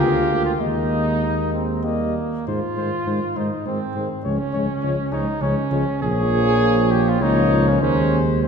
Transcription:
Already playing: F4 G4
0.00 D2 B3 F5
0.29 A#3
0.45 F4
0.59 D#2 G#3 A#3 D#4 D#5
1.53 C4
1.84 G3 A#3 D#5
2.47 G#2 D#3 G#3 F4 C5
2.77 G#2 D#3 G#3 C5
3.06 G#2 D#3 G#3 C5
3.36 G#2 D#3 G#3 D#4 C5
3.66 G#2 D#3 G#3 C4 C5
3.94 G#2 D#3 G#3 C5
4.24 C#2 F3 G#3 C#4 C#5
4.53 C#2 F3 G#3 C#5
4.82 C#2 F3 G#3 C#5
5.12 C#2 F3 G#3 D#4 C#5
5.41 C#2 F3 G#3 C#4 C#5
5.71 C#2 F3 G#3 C#5
6.01 A#1 F3 A#3 G#4 C#5
6.91 G4
7.08 F4
7.20 C#2 F3 A#3 D#4 C#5
7.68 C#4
7.81 D#2 D#3 G#3 C#4 C5
8.43 G#3 C4 C5

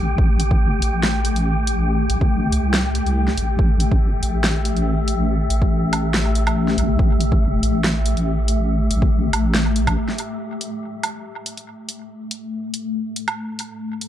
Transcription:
Already playing: A1 A3 G4 G5
0.18 A1, kick
0.40 closed hi-hat
0.51 kick
0.62 G#1
0.82 A1, closed hi-hat
1.03 snare
1.25 closed hi-hat
1.36 closed hi-hat
1.67 closed hi-hat
2.10 A1, closed hi-hat
2.21 kick
2.52 C2, closed hi-hat
2.74 snare
2.95 closed hi-hat
3.06 closed hi-hat
3.28 snare
3.38 A1, closed hi-hat
3.59 A1 E5, kick
3.80 closed hi-hat
3.92 kick
4.03 G#1
4.23 A1, closed hi-hat
4.44 snare
4.65 closed hi-hat
4.77 closed hi-hat
5.08 closed hi-hat
5.50 A1, closed hi-hat
5.62 kick
5.93 closed hi-hat, low woodblock
6.14 snare
6.35 closed hi-hat
6.47 closed hi-hat, low woodblock
6.68 snare
6.78 A1, closed hi-hat
6.99 A1, kick
7.21 closed hi-hat
7.32 kick
7.63 A1, closed hi-hat
7.84 snare
8.06 closed hi-hat
8.17 closed hi-hat
8.48 closed hi-hat
8.91 A1, closed hi-hat
9.02 kick
9.33 A1, closed hi-hat, low woodblock
9.54 snare
9.76 closed hi-hat
9.87 kick, closed hi-hat, low woodblock
10.09 snare
10.18 closed hi-hat
10.39 A3
10.61 closed hi-hat
11.03 closed hi-hat, low woodblock
11.46 closed hi-hat
11.57 closed hi-hat
11.89 closed hi-hat
12.31 closed hi-hat
12.74 closed hi-hat
13.16 closed hi-hat
13.28 closed hi-hat, low woodblock
13.59 closed hi-hat
14.01 closed hi-hat

